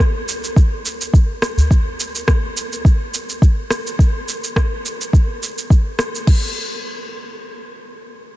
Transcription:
0.00 shaker
0.29 shaker
0.44 shaker
0.56 kick, shaker
0.86 shaker
1.01 shaker
1.14 kick, shaker
1.42 cross-stick, shaker
1.57 udu, shaker
1.71 kick, shaker
2.00 shaker
2.15 shaker
2.28 kick, cross-stick, shaker
2.57 shaker
2.73 shaker
2.85 kick, shaker
3.14 shaker
3.29 shaker
3.42 kick, shaker
3.70 cross-stick, shaker
3.87 shaker
3.99 kick, shaker
4.29 shaker
4.44 shaker
4.56 kick, cross-stick, shaker
4.86 shaker
5.01 shaker
5.13 kick, shaker
5.43 shaker
5.58 shaker
5.70 kick, shaker
5.99 cross-stick, shaker
6.15 shaker
6.27 kick, crash

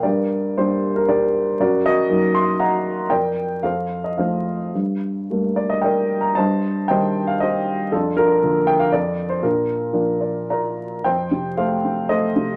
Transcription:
0.03 G2 G4 A#4 D5
0.58 G3 A#3 D4 G4 C5
0.96 A#4
1.09 G4 A#4 D5
1.60 F#2 F#4 A#4 D5
1.85 F#4 A#4 D#5
2.09 F#3 A#3 D#4
2.35 C6
2.60 D#5 F#5 A#5
3.10 F2 A#4 D5 G5
3.63 F2 A4 C5 F5
4.04 D#5
4.18 F3 A3 C4 A4 C5 F5
4.74 G2
5.30 G3 A3 A#3
5.56 D5
5.70 D#5
5.82 A#4 D5 G5
6.21 A#5
6.35 G2 C5 D#5 A5
6.88 D#3 G3 C4 C5 D#5 G5
7.27 F5
7.40 G4 C5 D#5
7.92 F2 D4 F4 A4
8.17 D4 F4 A#4
8.43 D3 F3 A#3
8.67 G5
8.79 F5
8.92 F2 A4 D5
9.29 C5
9.42 A#2 D4 F4 A#4
9.93 F3 A#3 D4
10.21 D5
10.50 F4 A#4 D5 A#5
11.04 F2 C5 G5
11.31 C3
11.57 A3 A4 C5 F5
11.84 C4
12.09 A3 A4 C5 D#5
12.36 C3

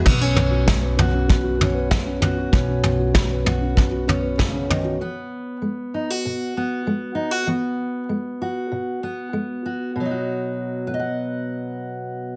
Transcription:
0.04 B2 B3, kick, floor tom, crash
0.20 C#4
0.35 B3, floor tom
0.51 F#4
0.66 F#3 B3, kick, snare, floor tom
0.82 B4
0.97 B3 F#4, floor tom
1.13 C#4
1.28 F#2 B3, kick, floor tom
1.43 F#4
1.59 B3 C#4, floor tom
1.74 B4
1.90 F#3 B3, kick, snare, floor tom
2.05 C#4
2.21 B3 F#4, floor tom
2.37 F#4
2.52 B1 B2 B3 C#4, kick, floor tom
2.68 C#4
2.84 B3, floor tom
2.99 F#4
3.13 F#3 B3, kick, snare, floor tom
3.29 B4
3.44 B3 F#4, floor tom
3.60 C#4
3.75 F#2 B3, kick, floor tom
3.91 F#4
4.07 B3 C#4, floor tom
4.22 B4
4.38 C#3 B3, kick, snare, floor tom
4.53 C#4
4.69 D#3 B3, floor tom
4.84 F#4
5.01 E3 B3
5.62 G#3
5.94 D#4
6.10 F#4
6.25 B2
6.57 B3
6.87 G#3
7.15 D#4
7.31 F#4
7.47 E3 B3
8.09 G#3
8.42 F#4
8.72 B2
9.03 B3
9.33 G#3
9.66 F#4
9.96 B2
10.00 F#3
10.05 D#4
10.11 F#4
10.87 B4
10.94 D#5
10.99 F#5

